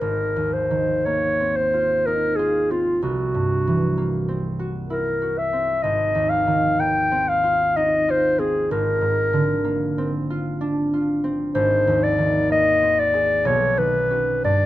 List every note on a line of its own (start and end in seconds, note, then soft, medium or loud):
0.00 3.08 G#1 soft
0.00 0.52 A#3 soft
0.00 0.54 D#4 soft
0.00 0.55 A#4 soft
0.36 3.08 D#2 soft
0.53 1.07 C5 soft
0.71 3.08 D#3 soft
1.06 3.96 A#3 soft
1.06 1.58 C#5 medium
1.40 2.69 C4 soft
1.56 2.08 C5 medium
1.74 2.38 F4 soft
2.06 3.08 D#4 soft
2.06 2.38 A#4 medium
2.36 3.08 F4 soft
2.36 2.73 G#4 medium
2.71 4.27 C4 soft
2.71 3.03 F4 soft
3.02 5.87 C2 soft
3.02 4.42 F#4 soft
3.34 5.87 G2 soft
3.67 5.88 E3 soft
3.98 6.78 A#3 soft
4.28 5.52 C4 soft
4.59 5.21 F#4 soft
4.89 5.87 E4 soft
4.89 5.40 A#4 medium
5.22 5.88 F#4 soft
5.38 5.84 E5 medium
5.53 7.10 C4 soft
5.83 8.70 G#1 soft
5.83 6.31 D#5 medium
6.15 8.74 D#2 soft
6.30 6.82 F5 medium
6.47 8.75 D#3 soft
6.79 9.63 A#3 soft
6.79 7.30 G5 medium
7.12 8.37 C4 soft
7.29 7.78 F5 medium
7.44 8.07 F4 soft
7.77 8.74 D#4 soft
7.77 8.12 D#5 medium
8.09 10.29 F4 soft
8.09 8.41 C5 medium
8.38 9.97 C4 soft
8.38 8.71 G#4 medium
8.71 11.54 G#1 soft
8.71 10.11 A#4 medium
9.01 11.59 G#2 soft
9.33 11.59 D3 soft
9.64 12.49 A#3 soft
9.98 11.23 C4 soft
10.30 10.92 F4 soft
10.61 11.59 D4 soft
10.94 11.60 F4 soft
11.24 12.81 C4 soft
11.54 13.50 G#1 soft
11.54 12.05 C5 medium
11.87 13.50 D#2 soft
12.03 12.51 D5 medium
12.18 13.50 D#3 soft
12.50 13.49 A#3 soft
12.50 13.01 D#5 medium
12.82 13.50 C4 soft
12.99 13.48 D5 medium
13.14 13.50 G#4 soft
13.45 14.48 B1 soft
13.45 13.80 C#5 medium
13.77 14.48 D#3 soft
13.77 14.44 B4 medium
14.10 14.48 C#4 soft
14.10 14.48 F#4 soft
14.44 14.66 G2 soft
14.44 14.66 D5 medium